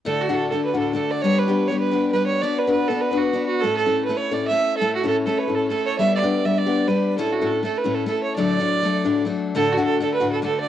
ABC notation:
X:1
M:4/4
L:1/16
Q:"Swing" 1/4=202
K:D
V:1 name="Fiddle"
A2 F2 A2 A2 B2 A2 A2 d2 | c2 B4 c2 B4 B2 c2 | d2 B2 B2 A2 B2 F4 F2 | A2 A4 B2 c2 d2 e4 |
A2 F2 A2 A3/2 c/2 B2 A2 A2 c2 | e2 d4 e2 d4 B4 | A2 F2 A2 A2 B2 A2 A2 c2 | d12 z4 |
A2 F2 A2 A2 B2 A2 A2 d2 |]
V:2 name="Steel-string acoustic guitar"
[D,,A,,D,A,DF]3 [D,,A,,D,A,DF]3 [D,A,DF]3 [D,,A,,D,A,DF]3 [D,A,DF]4 | [G,B,DG]3 [G,B,DG]3 [G,B,DG]3 [G,B,DG]3 [G,B,DG]4 | [B,DFB]3 [B,DFB]3 [B,DFB]3 [B,DFB]3 [B,DFB]4 | [A,,A,CEA]3 [A,,A,CEA]3 [A,CEA]3 [A,,A,CEA]3 [A,CEA]4 |
[A,,A,CEA]3 [A,,A,CEA]3 [A,CEA]3 [A,,A,CEA]3 [A,CEA]4 | [G,B,DG]3 [G,B,DG]3 [G,B,DG]3 [G,B,DG]3 [G,B,DG]4 | [A,,A,CEA]3 [A,,A,CEA]3 [A,CEA]3 [A,,A,CEA]3 [A,CEA]4 | [D,,A,,F,A,DA]3 [D,,A,,F,A,DA]3 [F,A,DA]3 [D,,A,,F,A,DA]3 [F,A,DA]4 |
[D,,A,,D,A,DF]3 [D,,A,,D,A,DF]3 [D,A,DF]3 [D,,A,,D,A,DF]3 [D,A,DF]4 |]